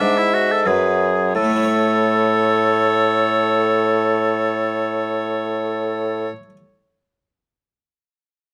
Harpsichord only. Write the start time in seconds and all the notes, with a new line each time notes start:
Already playing: B3 D4 E4
0.01 G#2
0.66 F#2
1.35 A2
1.42 A3
1.49 C#4
1.56 E4
1.63 C#5